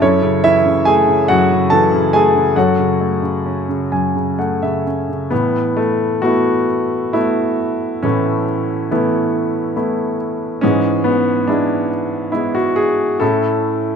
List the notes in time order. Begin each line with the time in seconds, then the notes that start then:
0.01 F#2 C#4 E4 A4 C#5
0.22 C#3
0.44 E3 E4 E5
0.66 C#3
0.85 A3 G#4 G#5
1.08 C#3
1.28 F#2 F#4 F#5
1.51 C#3
1.70 E3 A4 A5
1.94 C#3
2.13 A3 G#4 G#5
2.35 C#3
2.56 F#2 F#4 A4 C#5 F#5
2.79 C#3
3.01 A3
3.22 C#3
3.46 C#4
3.69 C#3
3.92 F#2 G#5
4.15 C#3
4.39 A3 F#5
4.62 C#3 E5
4.86 C#4
5.09 C#3
5.30 A2 E3 B3
5.77 A3
6.22 A3 B3 F#4
6.26 E4
7.13 A3 B3 E4
8.03 A2 E3 A3 C#4
8.91 E3 A3 B3 E4
9.76 A3 B3 E4
10.61 G#2 E3 G#3 C#4
11.04 B3
11.47 G#3 B3 D4 E4
12.32 G#3 B3 E4
12.55 F#4
12.76 G#4
13.20 A2 C#4 E4 A4